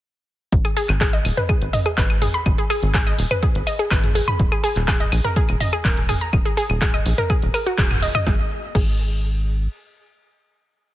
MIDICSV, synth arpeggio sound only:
0, 0, Header, 1, 2, 480
1, 0, Start_track
1, 0, Key_signature, 5, "minor"
1, 0, Tempo, 483871
1, 520, Time_signature, 4, 2, 24, 8
1, 10855, End_track
2, 0, Start_track
2, 0, Title_t, "Synth arpeggio sound"
2, 0, Program_c, 0, 84
2, 643, Note_on_c, 0, 68, 75
2, 734, Note_off_c, 0, 68, 0
2, 760, Note_on_c, 0, 68, 100
2, 877, Note_off_c, 0, 68, 0
2, 1000, Note_on_c, 0, 68, 107
2, 1057, Note_off_c, 0, 68, 0
2, 1123, Note_on_c, 0, 75, 79
2, 1215, Note_off_c, 0, 75, 0
2, 1363, Note_on_c, 0, 71, 78
2, 1454, Note_off_c, 0, 71, 0
2, 1479, Note_on_c, 0, 68, 80
2, 1596, Note_off_c, 0, 68, 0
2, 1719, Note_on_c, 0, 75, 77
2, 1816, Note_off_c, 0, 75, 0
2, 1843, Note_on_c, 0, 68, 76
2, 1934, Note_off_c, 0, 68, 0
2, 1959, Note_on_c, 0, 71, 85
2, 2077, Note_off_c, 0, 71, 0
2, 2199, Note_on_c, 0, 68, 78
2, 2296, Note_off_c, 0, 68, 0
2, 2323, Note_on_c, 0, 83, 76
2, 2378, Note_off_c, 0, 83, 0
2, 2562, Note_on_c, 0, 68, 74
2, 2654, Note_off_c, 0, 68, 0
2, 2679, Note_on_c, 0, 68, 100
2, 2796, Note_off_c, 0, 68, 0
2, 2919, Note_on_c, 0, 68, 101
2, 2977, Note_off_c, 0, 68, 0
2, 3042, Note_on_c, 0, 75, 80
2, 3134, Note_off_c, 0, 75, 0
2, 3283, Note_on_c, 0, 71, 77
2, 3374, Note_off_c, 0, 71, 0
2, 3399, Note_on_c, 0, 68, 78
2, 3516, Note_off_c, 0, 68, 0
2, 3639, Note_on_c, 0, 75, 74
2, 3736, Note_off_c, 0, 75, 0
2, 3762, Note_on_c, 0, 68, 76
2, 3854, Note_off_c, 0, 68, 0
2, 3878, Note_on_c, 0, 71, 87
2, 3996, Note_off_c, 0, 71, 0
2, 4118, Note_on_c, 0, 68, 76
2, 4215, Note_off_c, 0, 68, 0
2, 4242, Note_on_c, 0, 83, 74
2, 4297, Note_off_c, 0, 83, 0
2, 4482, Note_on_c, 0, 68, 73
2, 4574, Note_off_c, 0, 68, 0
2, 4599, Note_on_c, 0, 68, 102
2, 4716, Note_off_c, 0, 68, 0
2, 4839, Note_on_c, 0, 68, 102
2, 4897, Note_off_c, 0, 68, 0
2, 4962, Note_on_c, 0, 75, 79
2, 5054, Note_off_c, 0, 75, 0
2, 5203, Note_on_c, 0, 70, 76
2, 5294, Note_off_c, 0, 70, 0
2, 5320, Note_on_c, 0, 68, 82
2, 5437, Note_off_c, 0, 68, 0
2, 5560, Note_on_c, 0, 75, 78
2, 5656, Note_off_c, 0, 75, 0
2, 5683, Note_on_c, 0, 68, 76
2, 5774, Note_off_c, 0, 68, 0
2, 5800, Note_on_c, 0, 70, 87
2, 5917, Note_off_c, 0, 70, 0
2, 6040, Note_on_c, 0, 68, 75
2, 6136, Note_off_c, 0, 68, 0
2, 6163, Note_on_c, 0, 82, 76
2, 6218, Note_off_c, 0, 82, 0
2, 6402, Note_on_c, 0, 68, 76
2, 6494, Note_off_c, 0, 68, 0
2, 6520, Note_on_c, 0, 68, 104
2, 6637, Note_off_c, 0, 68, 0
2, 6760, Note_on_c, 0, 68, 100
2, 6818, Note_off_c, 0, 68, 0
2, 6883, Note_on_c, 0, 75, 75
2, 6975, Note_off_c, 0, 75, 0
2, 7123, Note_on_c, 0, 70, 75
2, 7215, Note_off_c, 0, 70, 0
2, 7240, Note_on_c, 0, 68, 83
2, 7357, Note_off_c, 0, 68, 0
2, 7480, Note_on_c, 0, 70, 77
2, 7538, Note_off_c, 0, 70, 0
2, 7603, Note_on_c, 0, 66, 77
2, 7694, Note_off_c, 0, 66, 0
2, 7719, Note_on_c, 0, 68, 89
2, 7777, Note_off_c, 0, 68, 0
2, 7959, Note_on_c, 0, 75, 77
2, 8056, Note_off_c, 0, 75, 0
2, 8082, Note_on_c, 0, 75, 100
2, 8174, Note_off_c, 0, 75, 0
2, 8199, Note_on_c, 0, 68, 94
2, 8336, Note_off_c, 0, 68, 0
2, 8679, Note_on_c, 0, 68, 94
2, 8816, Note_off_c, 0, 68, 0
2, 10855, End_track
0, 0, End_of_file